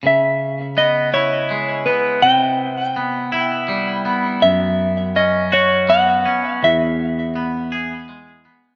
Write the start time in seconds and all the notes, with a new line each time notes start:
0.03 C#3 E5
0.77 B3 D#5
1.14 E4 C#5
1.51 G#3
1.86 B3 B4
2.22 C3 G5
2.76 F#5
2.96 B3
3.32 E4
3.68 G3
4.05 B3
4.42 F#2 E5
5.16 C#4 D#5
5.52 F#4 C#5
5.89 B3 F#5
6.25 C#4
6.63 E2 E5
7.36 B3
7.72 G#4
8.09 G#3
8.45 B3